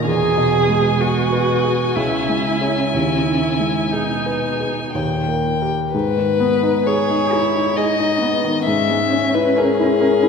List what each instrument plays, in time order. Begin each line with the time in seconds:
Already playing: grand piano D#4
0.07 grand piano E2, cello B2, viola G#4, violin G#5
0.37 grand piano B2
0.69 grand piano G#3
1.01 viola F#4, grand piano G#4
1.33 grand piano B4
1.65 grand piano G#4
1.95 grand piano C#2, cello C#3, viola E4
2.29 grand piano G#3
2.61 grand piano G#4 C#5
2.94 grand piano D#2, viola E4
3.26 grand piano D#3
3.59 grand piano G#3
3.91 cello B2, viola D#4, grand piano G#4
4.26 grand piano B4
4.60 grand piano G#4
4.95 grand piano D#2, cello A#2, violin G5
5.28 grand piano A#3
5.62 grand piano G4 A#4
5.94 grand piano G#2, violin B4
6.17 grand piano D#3
6.40 grand piano B3
6.63 grand piano D#4
6.86 viola G#3, cello G#4, grand piano G#4, violin C#5
7.10 grand piano D#4
7.32 cello E4, grand piano G#4
7.56 grand piano D#4
7.77 viola G#3, cello D#4, grand piano G#4, violin D#5
8.00 grand piano D#4
8.20 cello B3, grand piano B3
8.44 grand piano D#3
8.64 grand piano G#2, cello C#4, violin E5
8.90 grand piano G#3
9.13 grand piano C#4
9.35 grand piano E4, violin B4
9.58 viola C#4, violin G#4, grand piano A#4
9.80 grand piano E4
10.01 grand piano A#4
10.23 grand piano E4